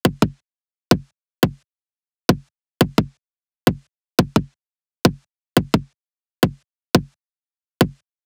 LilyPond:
\new DrumStaff \with { instrumentName = "Drums" } \drummode { \time 4/4 \tempo 4 = 174 bd8 bd8 r4 r8 bd8 r4 | bd4 r4 r8 bd8 r4 | bd8 bd8 r4 r8 bd8 r4 | bd8 bd8 r4 r8 bd8 r4 |
bd8 bd8 r4 r8 bd8 r4 | bd4 r4 r8 bd8 r4 | }